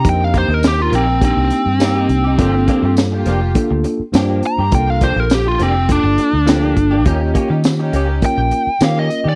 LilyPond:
<<
  \new Staff \with { instrumentName = "Lead electric guitar" } { \time 4/4 \key g \minor \tempo 4 = 103 g''16 f''16 c''16 bes'16 g'16 f'16 c'8 c'2~ | c'4 r2 r8 bes''8 | g''16 f''16 c''16 bes'16 g'16 f'16 c'8 d'2 | r2 g''4 f''16 ees''8 d''16 | }
  \new Staff \with { instrumentName = "String section" } { \time 4/4 \key g \minor <c' ees' bes'>8 r16 <c' ees' bes'>16 r16 <c' bes'>4 r4. r16 | <bes f' g'>8 r16 <bes f' g'>16 r16 <bes f' g'>4 r4. r16 | <bes f' bes'>8 r16 <bes f' g'>16 r16 <bes f' g'>4 r4. r16 | <des' ees' g'>8 r16 <des' ees' g'>16 r16 <des' ees' g'>4 r4. r16 | }
  \new Staff \with { instrumentName = "Tine electric piano" } { \time 4/4 \key g \minor <bes d' ees' g'>4. r8 <bes d' ees' g'>4 <bes d' ees' g'>4 | <bes d' f' a'>4. r8 <bes d' f' a'>4 <bes d' f' c''>4 | <bes d' f' a'>4. r8 <bes d' f' a'>4 <bes d' f' a'>4 | <bes des' f' g'>4. r8 <bes des' f' bes'>4 <bes des' f' bes'>4 | }
  \new Staff \with { instrumentName = "Clean electric guitar" } { \time 4/4 \key g \minor r8 <bes ees' g'>16 r8. <bes ees' g'>16 r4 r16 <bes ees' g'>16 <bes ees' g'>16 r16 <ees' g'>16 | <f bes d' g'>16 r16 <f bes d' g'>16 r8. <f bes d' g'>16 r4 r16 <f bes d' g'>16 <f bes d' g'>16 r16 <bes d' g'>16 | r8 <f bes d' g'>16 r8. <f bes d' g'>16 r4 r16 <f bes d' g'>16 <f bes d' g'>16 r16 <bes d' g'>16 | <bes des' g'>16 r16 <bes des' g'>16 r8. <bes des' g'>16 r4 r16 <bes des' g'>16 <bes des' g'>16 r16 <des' g'>16 | }
  \new Staff \with { instrumentName = "Fingered electric bass" } { \clef bass \time 4/4 \key g \minor f,8. ees,8. bes,,8. c,16 r16 g,8. c,8 | g,,8 r16 g,8. f,,8 r16 d,16 r8 g,8 r16 g,16 | c,8. bes,,8. f,,8. g,,16 r16 d,8. g,,8 | ees,8 r16 ees8. des,8 r16 bes,,16 r8 ees8 r16 ees16 | }
  \new DrumStaff \with { instrumentName = "Drums" } \drummode { \time 4/4 <hh bd>8 <hh bd>8 <hh sn tamb>8 hh8 <hh bd>8 hh8 <hh sn tamb>8 hh8 | <hh bd>8 <hh bd>8 <hh sn tamb>8 hh8 <hh bd>8 hh8 <hh sn tamb>8 hh8 | <hh bd>8 <hh bd>8 <hh sn tamb>8 hh8 <hh bd>8 hh8 <hh sn tamb>8 <hh bd>8 | <hh bd>8 <hh bd>8 <hh sn tamb>8 hh8 <hh bd>8 hh8 <hh sn tamb>8 hh8 | }
>>